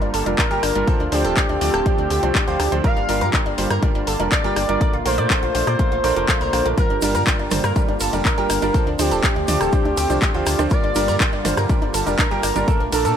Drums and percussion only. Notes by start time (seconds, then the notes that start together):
0.02 closed hi-hat
0.14 open hi-hat
0.26 closed hi-hat
0.38 kick, clap, closed hi-hat
0.51 closed hi-hat
0.63 cross-stick, open hi-hat
0.75 closed hi-hat
0.88 kick, closed hi-hat
1.00 closed hi-hat
1.12 open hi-hat
1.25 closed hi-hat
1.37 kick, clap, closed hi-hat
1.49 closed hi-hat
1.61 open hi-hat
1.74 cross-stick, closed hi-hat
1.86 kick, closed hi-hat
1.98 closed hi-hat
2.10 open hi-hat
2.23 closed hi-hat
2.35 kick, clap, closed hi-hat
2.48 closed hi-hat
2.60 cross-stick, open hi-hat
2.72 closed hi-hat
2.84 kick, closed hi-hat
2.97 closed hi-hat
3.09 open hi-hat
3.21 closed hi-hat
3.33 kick, clap, closed hi-hat
3.46 closed hi-hat
3.58 open hi-hat
3.70 cross-stick, closed hi-hat
3.83 kick, closed hi-hat
3.95 closed hi-hat
4.07 open hi-hat
4.20 closed hi-hat
4.32 kick, clap, closed hi-hat
4.44 closed hi-hat
4.56 cross-stick, open hi-hat
4.69 closed hi-hat
4.81 kick, closed hi-hat
4.93 closed hi-hat
5.06 open hi-hat
5.18 closed hi-hat
5.30 kick, clap, closed hi-hat
5.43 closed hi-hat
5.55 open hi-hat
5.67 cross-stick, closed hi-hat
5.79 kick, closed hi-hat
5.92 closed hi-hat
6.04 open hi-hat
6.16 closed hi-hat
6.28 kick, clap, closed hi-hat
6.41 closed hi-hat
6.53 cross-stick, open hi-hat
6.66 closed hi-hat
6.78 kick, closed hi-hat, shaker
6.90 closed hi-hat
7.02 open hi-hat, ride, high conga, shaker
7.15 closed hi-hat, shaker
7.27 kick, clap, closed hi-hat, shaker
7.39 closed hi-hat
7.51 cross-stick, open hi-hat, mid tom, ride, high conga, shaker
7.64 cross-stick, closed hi-hat, shaker
7.76 kick, closed hi-hat, shaker
7.88 closed hi-hat, high conga
8.00 open hi-hat, ride, shaker
8.13 closed hi-hat, shaker
8.25 kick, clap, closed hi-hat, high conga, shaker
8.38 closed hi-hat
8.50 cross-stick, open hi-hat, ride, shaker
8.61 closed hi-hat, high conga, shaker
8.74 kick, closed hi-hat, shaker
8.87 closed hi-hat
8.99 open hi-hat, ride, high conga, shaker
9.11 closed hi-hat, shaker
9.23 kick, clap, closed hi-hat, shaker
9.36 closed hi-hat
9.48 open hi-hat, mid tom, ride, high conga, shaker
9.61 cross-stick, closed hi-hat, shaker
9.72 kick, closed hi-hat, shaker
9.85 closed hi-hat, high conga
9.97 open hi-hat, ride, shaker
10.10 closed hi-hat, shaker
10.22 kick, clap, closed hi-hat, high conga, shaker
10.34 closed hi-hat
10.46 cross-stick, open hi-hat, ride, shaker
10.59 cross-stick, closed hi-hat, high conga, shaker
10.70 kick, closed hi-hat, shaker
10.84 closed hi-hat
10.95 open hi-hat, ride, high conga, shaker
11.08 closed hi-hat, shaker
11.20 kick, clap, closed hi-hat, shaker
11.33 closed hi-hat
11.45 cross-stick, open hi-hat, mid tom, ride, high conga, shaker
11.57 cross-stick, closed hi-hat, shaker
11.69 kick, closed hi-hat, shaker
11.82 closed hi-hat, high conga
11.94 open hi-hat, ride, shaker
12.07 closed hi-hat, shaker
12.19 kick, clap, closed hi-hat, high conga, shaker
12.31 closed hi-hat
12.43 cross-stick, open hi-hat, ride, shaker
12.56 closed hi-hat, high conga, shaker
12.68 kick, closed hi-hat, shaker
12.80 closed hi-hat
12.92 open hi-hat, ride, high conga, shaker
13.05 closed hi-hat, shaker